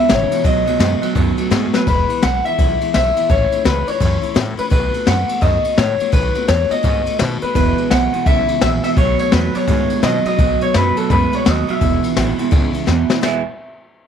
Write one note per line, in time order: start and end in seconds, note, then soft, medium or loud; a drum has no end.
0.00 0.11 E5 loud
0.09 0.25 G#1 loud
0.09 0.31 E2 medium
0.09 0.29 E2 medium
0.09 0.32 B2 medium
0.09 0.29 C#3 loud
0.09 0.32 E3 medium
0.09 0.32 G#3 medium
0.09 0.31 B3 medium
0.09 0.30 E4 medium
0.09 0.43 C#5 medium
0.09 snare loud
0.09 ride medium
0.31 0.43 E2 medium
0.31 0.43 B2 medium
0.31 0.44 E3 soft
0.31 0.44 G#3 medium
0.31 0.45 B3 medium
0.31 0.45 E4 medium
0.31 muted upright bass stroke medium
0.31 ride medium
0.44 0.60 B1 loud
0.44 0.67 B2 medium
0.44 0.65 B2 medium
0.44 0.67 D#3 medium
0.44 0.65 F#3 loud
0.44 0.67 A3 medium
0.44 0.67 B3 medium
0.44 0.65 F#4 loud
0.44 1.13 D#5 loud
0.44 kick loud
0.44 ride medium
0.66 0.76 B1 medium
0.66 0.78 B2 medium
0.66 0.79 F#3 medium
0.66 0.79 A3 soft
0.66 0.80 B3 soft
0.66 0.80 F#4 medium
0.66 ride medium
0.79 0.95 F#2 medium
0.79 1.00 B2 medium
0.79 1.02 B2 medium
0.79 1.03 D#3 medium
0.79 1.00 G#3 medium
0.79 1.03 A3 medium
0.79 1.02 B3 medium
0.79 1.00 F#4 medium
0.79 snare loud
0.79 ride loud
1.01 1.14 B2 medium
1.01 1.14 F#3 medium
1.01 1.15 A3 soft
1.01 1.16 B3 medium
1.01 1.15 F#4 medium
1.01 muted upright bass stroke medium
1.01 ride medium
1.15 1.31 F#2 loud
1.15 1.35 B2 medium
1.15 1.38 D#3 medium
1.15 1.36 F#3 loud
1.15 1.38 A3 medium
1.15 1.38 B3 medium
1.15 1.36 F#4 medium
1.15 kick loud
1.15 ride medium
1.38 1.50 B2 medium
1.38 1.50 F#3 medium
1.38 1.50 A3 medium
1.38 1.51 B3 medium
1.38 1.51 F#4 medium
1.38 muted upright bass stroke medium
1.38 ride medium
1.50 1.67 G#2 medium
1.50 1.73 B2 medium
1.50 1.71 B2 medium
1.50 1.73 D#3 loud
1.50 1.72 G#3 medium
1.50 1.74 A3 loud
1.50 1.74 B3 medium
1.50 1.72 F#4 loud
1.50 snare loud
1.50 ride medium
1.73 1.86 B2 medium
1.73 1.86 F#3 medium
1.73 1.88 A3 soft
1.73 1.87 B3 medium
1.73 1.87 F#4 medium
1.73 1.87 B4 medium
1.73 muted upright bass stroke medium
1.73 snare medium
1.87 2.08 E1 loud
1.87 2.09 E2 medium
1.87 2.09 B2 medium
1.87 2.10 E3 medium
1.87 2.09 G#3 medium
1.87 2.08 B3 medium
1.87 2.07 E4 medium
1.87 2.24 B4 loud
1.87 kick loud
1.87 ride medium
2.09 2.21 E3 soft
2.09 2.22 G#3 soft
2.09 2.22 B3 medium
2.09 2.22 E4 medium
2.09 ride medium
2.22 2.44 B1 medium
2.22 2.45 E3 medium
2.22 2.45 G#3 medium
2.22 2.44 B3 medium
2.22 2.43 E4 medium
2.22 2.44 F#5 loud
2.22 snare loud
2.22 ride loud
2.44 2.58 E3 soft
2.44 2.59 G#3 soft
2.44 2.58 B3 soft
2.44 2.58 E4 medium
2.44 2.90 E5 loud
2.44 ride medium
2.58 2.79 B1 medium
2.58 2.80 E2 medium
2.58 2.81 B2 medium
2.58 2.81 E3 medium
2.58 2.81 G#3 medium
2.58 2.80 B3 medium
2.58 2.79 E4 medium
2.58 kick loud
2.58 ride medium
2.81 2.92 E3 soft
2.81 2.93 G#3 medium
2.81 2.94 B3 medium
2.81 2.94 E4 medium
2.81 ride medium
2.94 3.15 B1 loud
2.94 3.16 G#3 medium
2.94 3.16 B3 medium
2.94 3.15 E4 medium
2.94 3.30 E5 loud
2.94 snare loud
2.94 ride medium
3.16 3.28 E3 medium
3.16 3.30 G#3 soft
3.16 3.30 B3 medium
3.16 3.29 E4 medium
3.16 muted upright bass stroke medium
3.16 ride medium
3.29 3.50 A1 medium
3.29 3.51 A2 medium
3.29 3.52 E3 medium
3.29 3.52 A3 medium
3.29 3.52 C#4 medium
3.29 3.51 E4 loud
3.29 3.65 C#5 loud
3.29 kick loud
3.29 ride medium
3.52 3.64 A3 soft
3.52 3.65 C#4 medium
3.52 3.65 E4 medium
3.52 ride medium
3.65 3.86 C#2 medium
3.65 3.87 E3 medium
3.65 3.87 A3 medium
3.65 3.87 C#4 medium
3.65 3.86 E4 medium
3.65 3.88 B4 medium
3.65 snare loud
3.65 ride medium
3.87 4.00 A3 soft
3.87 4.00 C#4 soft
3.87 4.00 E4 medium
3.87 4.36 C#5 medium
3.87 ride medium
4.00 4.22 F#2 loud
4.00 4.22 A2 medium
4.00 4.23 E3 medium
4.00 4.23 A3 medium
4.00 4.22 C#4 medium
4.00 4.20 E4 medium
4.00 kick loud
4.00 ride medium
4.22 4.34 A3 soft
4.22 4.35 C#4 medium
4.22 4.35 E4 medium
4.22 muted upright bass stroke medium
4.22 ride medium
4.34 4.57 A2 loud
4.34 4.57 E3 medium
4.34 4.58 A3 medium
4.34 4.57 C#4 medium
4.34 4.56 E4 medium
4.34 snare loud
4.34 ride medium
4.57 4.70 A3 soft
4.57 4.71 C#4 soft
4.57 4.71 E4 medium
4.57 4.64 B4 loud
4.57 muted upright bass stroke medium
4.57 ride medium
4.70 4.93 B1 loud
4.70 4.93 B2 medium
4.70 4.93 D#3 medium
4.70 4.93 A3 medium
4.70 4.93 B3 medium
4.70 4.91 F#4 medium
4.70 5.08 B4 loud
4.70 kick loud
4.70 ride medium
4.92 5.05 A3 soft
4.92 5.06 B3 soft
4.92 5.06 F#4 medium
4.92 ride medium
5.06 5.28 F#2 medium
5.06 5.28 D#3 medium
5.06 5.29 A3 medium
5.06 5.28 B3 medium
5.06 5.27 F#4 medium
5.06 5.40 F#5 loud
5.06 snare loud
5.06 ride medium
5.28 5.41 A3 soft
5.28 5.42 B3 soft
5.28 5.42 F#4 medium
5.28 ride medium
5.41 5.63 F#2 loud
5.41 5.64 B2 medium
5.41 5.64 D#3 medium
5.41 5.65 A3 medium
5.41 5.64 B3 medium
5.41 5.63 F#4 medium
5.41 5.75 D#5 loud
5.41 kick loud
5.41 ride medium
5.64 5.76 A3 soft
5.64 5.77 B3 medium
5.64 5.77 F#4 medium
5.64 muted upright bass stroke medium
5.64 ride medium
5.76 5.99 A2 medium
5.76 5.99 D#3 medium
5.76 6.00 A3 medium
5.76 5.99 B3 medium
5.76 5.98 F#4 medium
5.76 6.11 C#5 loud
5.76 snare loud
5.76 ride medium
5.99 6.12 A3 soft
5.99 6.13 B3 medium
5.99 6.13 F#4 medium
5.99 muted upright bass stroke medium
5.99 ride medium
6.12 6.34 B1 loud
6.12 6.35 B2 medium
6.12 6.35 D#3 medium
6.12 6.35 A3 medium
6.12 6.34 B3 medium
6.12 6.33 F#4 medium
6.12 6.48 B4 loud
6.12 kick loud
6.12 ride medium
6.34 6.47 A3 soft
6.34 6.48 B3 soft
6.34 6.48 F#4 medium
6.34 ride medium
6.48 6.70 E2 medium
6.48 6.70 D#3 medium
6.48 6.71 A3 medium
6.48 6.70 B3 medium
6.48 6.68 F#4 medium
6.48 6.71 C#5 loud
6.48 snare loud
6.48 ride medium
6.69 6.83 A3 soft
6.69 6.83 B3 soft
6.69 6.83 F#4 medium
6.69 7.16 D#5 medium
6.69 muted upright bass stroke medium
6.69 ride medium
6.83 7.05 G#2 loud
6.83 7.06 B2 medium
6.83 7.06 D#3 medium
6.83 7.06 A3 medium
6.83 7.06 B3 medium
6.83 7.05 F#4 medium
6.83 kick loud
6.83 ride medium
7.06 7.18 A3 soft
7.06 7.19 B3 soft
7.06 7.19 F#4 medium
7.06 muted upright bass stroke medium
7.06 ride medium
7.19 7.42 B2 loud
7.19 7.41 D#3 medium
7.19 7.42 A3 medium
7.19 7.42 B3 medium
7.19 7.40 F#4 medium
7.19 snare loud
7.19 ride medium
7.42 7.56 A3 soft
7.42 7.56 B3 soft
7.42 7.55 F#4 medium
7.42 7.54 B4 medium
7.42 muted upright bass stroke medium
7.42 ride medium
7.55 7.76 E1 loud
7.55 7.88 E2 medium
7.55 7.77 E2 medium
7.55 7.88 B2 medium
7.55 7.78 B2 medium
7.55 7.78 E3 medium
7.55 7.78 G#3 medium
7.55 7.77 B3 medium
7.55 7.77 E4 medium
7.55 7.92 B4 loud
7.55 kick loud
7.55 ride medium
7.78 7.89 E3 soft
7.78 7.90 G#3 soft
7.78 7.91 B3 medium
7.78 7.91 E4 medium
7.78 ride medium
7.90 8.12 B1 medium
7.90 8.10 E2 medium
7.90 8.11 B2 loud
7.90 8.13 E3 medium
7.90 8.13 G#3 medium
7.90 8.13 B3 medium
7.90 8.12 E4 medium
7.90 8.26 F#5 loud
7.90 snare loud
7.90 ride medium
8.13 8.25 E2 medium
8.13 8.25 B2 medium
8.13 8.26 E3 soft
8.13 8.26 G#3 soft
8.13 8.27 B3 medium
8.13 8.26 E4 medium
8.13 ride medium
8.26 8.47 B1 loud
8.26 8.59 E2 medium
8.26 8.48 E2 medium
8.26 8.49 B2 medium
8.26 8.59 C#3 loud
8.26 8.49 E3 medium
8.26 8.49 G#3 medium
8.26 8.48 B3 medium
8.26 8.47 E4 medium
8.26 8.60 E5 loud
8.26 kick loud
8.26 ride medium
8.48 8.60 E3 soft
8.48 8.61 G#3 soft
8.48 8.62 B3 soft
8.48 8.62 E4 medium
8.48 muted upright bass stroke medium
8.48 ride medium
8.61 8.83 A#1 medium
8.61 8.81 E2 medium
8.61 8.82 B2 medium
8.61 8.84 E3 medium
8.61 8.84 G#3 medium
8.61 8.83 B3 medium
8.61 8.82 E4 medium
8.61 8.68 E5 loud
8.61 snare loud
8.61 ride medium
8.83 8.95 E2 medium
8.83 8.95 B2 medium
8.83 8.97 E3 soft
8.83 8.97 G#3 medium
8.83 8.97 B3 medium
8.83 8.97 E4 medium
8.83 8.89 E5 medium
8.83 ride medium
8.96 9.18 B1 loud
8.96 9.29 B2 medium
8.96 9.19 B2 medium
8.96 9.20 D#3 medium
8.96 9.30 F#3 medium
8.96 9.20 A3 medium
8.96 9.19 B3 medium
8.96 9.18 F#4 medium
8.96 9.19 C#5 loud
8.96 kick loud
8.96 ride medium
9.19 9.31 A3 medium
9.19 9.32 B3 soft
9.19 9.32 F#4 medium
9.19 9.33 C#5 medium
9.19 ride medium
9.31 9.54 E2 medium
9.31 9.52 B2 medium
9.31 9.54 D#3 medium
9.31 9.52 F#3 loud
9.31 9.55 A3 medium
9.31 9.54 B3 medium
9.31 9.53 F#4 medium
9.31 9.56 B4 medium
9.31 snare loud
9.31 ride loud
9.54 9.66 B2 medium
9.54 9.66 F#3 medium
9.54 9.67 A3 soft
9.54 9.68 B3 soft
9.54 9.68 F#4 medium
9.54 10.03 C#5 medium
9.54 muted upright bass stroke medium
9.54 ride medium
9.67 9.88 G#2 loud
9.67 9.90 B2 medium
9.67 10.01 B2 medium
9.67 9.90 D#3 medium
9.67 10.01 G#3 loud
9.67 9.91 A3 medium
9.67 9.90 B3 medium
9.67 9.88 F#4 medium
9.67 kick loud
9.67 ride medium
9.89 10.02 A3 soft
9.89 10.03 B3 medium
9.89 10.03 F#4 medium
9.89 muted upright bass stroke medium
9.89 ride medium
10.02 10.24 B2 medium
10.02 10.23 B2 medium
10.02 10.25 D#3 medium
10.02 10.24 F#3 medium
10.02 10.26 A3 medium
10.02 10.25 B3 medium
10.02 10.23 F#4 medium
10.02 10.25 D#5 loud
10.02 snare loud
10.02 ride medium
10.25 10.38 B2 medium
10.25 10.38 F#3 loud
10.25 10.38 A3 soft
10.25 10.39 B3 medium
10.25 10.38 F#4 medium
10.25 10.59 D#5 loud
10.25 muted upright bass stroke medium
10.25 ride medium
10.38 10.60 B1 loud
10.38 10.61 B2 medium
10.38 10.72 B2 medium
10.38 10.61 D#3 medium
10.38 10.72 F#3 loud
10.38 10.62 A3 medium
10.38 10.61 B3 medium
10.38 10.60 F#4 medium
10.38 kick loud
10.38 ride medium
10.61 10.74 A3 soft
10.61 10.74 B3 medium
10.61 10.74 F#4 medium
10.61 10.75 C#5 medium
10.61 ride medium
10.74 10.96 F#2 medium
10.74 10.95 B2 medium
10.74 10.97 D#3 medium
10.74 10.95 F#3 loud
10.74 10.97 A3 medium
10.74 10.97 B3 medium
10.74 10.95 F#4 medium
10.74 10.96 B4 medium
10.74 snare loud
10.74 ride medium
10.97 11.09 B2 medium
10.97 11.09 F#3 medium
10.97 11.10 A3 soft
10.97 11.10 B3 soft
10.97 11.10 F#4 medium
10.97 11.11 A4 medium
10.97 ride medium
11.10 11.31 F#2 medium
11.10 11.32 B2 medium
11.10 11.43 B2 medium
11.10 11.33 D#3 medium
11.10 11.43 G#3 medium
11.10 11.33 A3 medium
11.10 11.32 B3 medium
11.10 11.31 F#4 medium
11.10 11.35 B4 loud
11.10 kick loud
11.10 ride medium
11.32 11.44 A3 soft
11.32 11.45 B3 medium
11.32 11.45 F#4 medium
11.32 11.49 C#5 medium
11.32 muted upright bass stroke medium
11.32 ride medium
11.45 11.67 D#2 medium
11.45 11.66 B2 medium
11.45 11.68 D#3 medium
11.45 11.66 F#3 medium
11.45 11.68 A3 medium
11.45 11.67 B3 medium
11.45 11.66 F#4 medium
11.45 11.70 D#5 medium
11.45 snare loud
11.45 ride medium
11.67 11.80 B2 medium
11.67 11.80 F#3 medium
11.67 11.81 A3 soft
11.67 11.81 B3 soft
11.67 11.81 F#4 medium
11.67 12.05 E5 medium
11.67 ride medium
11.81 12.02 E1 loud
11.81 12.03 E2 medium
11.81 12.14 E2 medium
11.81 12.14 B2 medium
11.81 12.04 B2 medium
11.81 12.04 E3 medium
11.81 12.04 G#3 medium
11.81 12.03 B3 medium
11.81 12.02 E4 medium
11.81 kick loud
11.81 ride medium
12.03 12.15 E3 soft
12.03 12.16 G#3 soft
12.03 12.17 B3 soft
12.03 12.16 E4 medium
12.03 muted upright bass stroke medium
12.03 ride medium
12.16 12.38 A1 medium
12.16 12.37 E2 medium
12.16 12.37 B2 loud
12.16 12.39 E3 medium
12.16 12.39 G#3 medium
12.16 12.38 B3 medium
12.16 12.37 E4 medium
12.16 snare loud
12.16 ride loud
12.38 12.51 E2 medium
12.38 12.51 B2 medium
12.38 12.51 E3 soft
12.38 12.51 G#3 medium
12.38 12.51 B3 medium
12.38 12.52 E4 medium
12.38 ride medium
12.51 12.73 C#2 loud
12.51 12.74 E2 loud
12.51 12.85 E2 medium
12.51 12.74 B2 loud
12.51 12.85 C#3 medium
12.51 12.74 E3 loud
12.51 12.74 G#3 loud
12.51 12.73 B3 loud
12.51 12.72 E4 loud
12.51 kick loud
12.51 ride loud
12.74 12.85 E3 soft
12.74 12.86 G#3 medium
12.74 12.87 B3 medium
12.74 12.87 E4 medium
12.74 ride medium
12.86 13.09 E2 medium
12.86 13.08 E2 medium
12.86 13.08 B2 medium
12.86 13.09 E3 medium
12.86 13.10 G#3 medium
12.86 13.09 B3 medium
12.86 13.08 E4 medium
12.86 snare medium
13.09 13.22 E2 medium
13.09 13.22 B2 medium
13.09 13.22 E3 soft
13.09 13.22 G#3 medium
13.09 13.23 B3 medium
13.09 13.23 E4 medium
13.09 snare loud
13.21 13.44 E1 medium
13.21 13.40 E2 medium
13.21 13.41 B2 medium
13.21 13.41 E3 medium
13.21 13.41 G#3 loud
13.21 13.41 G#3 medium
13.21 13.41 B3 loud
13.21 13.41 E4 loud
13.21 13.42 G#4 loud
13.21 snare loud
13.21 crash medium